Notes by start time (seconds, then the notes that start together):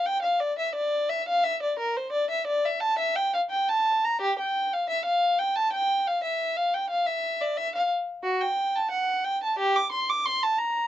0.05 G5
0.22 F5
0.40 D5
0.59 E5
0.75 D5
1.09 E5
1.28 F5
1.44 E5
1.63 D5
1.79 A#4
1.96 C5
2.12 D5
2.30 E5
2.47 D5
2.65 E5
2.80 A5
2.99 E5
3.16 G5
3.34 F5
3.50 G5
3.69 A5
4.04 A#5
4.21 G4
4.39 G5
4.73 F5
4.90 E5
5.05 F5
5.39 G5
5.55 A5
5.72 G5
6.07 F5
6.23 E5
6.56 F5
6.74 G5
6.90 F5
7.06 E5
7.41 D5
7.57 E5
7.75 F5
8.23 F#4
8.41 G5
8.76 A5
8.91 F#5
9.24 G5
9.43 A5
9.59 G4
9.76 D6
9.92 C6
10.09 D6
10.26 C6
10.43 A5
10.59 A#5